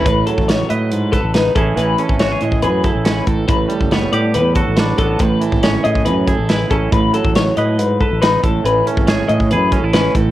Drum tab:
HH |x-x-x-x-x-x-x-x-|x-x-x-x-x-x-x-x-|x-x-x-x-x-x-x-x-|x-x-x-x-x-x-x-x-|
SD |----o-------o---|----o-------o---|----o-------o---|----o-------o---|
BD |o--o------o---o-|---o---o--o---o-|o--o------o---o-|o--o---o--o---o-|

HH |x-x-x-x-x-x-x-x-|x-x-x-x-x-x-x-x-|
SD |----o-------o---|----o-------o---|
BD |o--o------o---o-|---o---o--o---o-|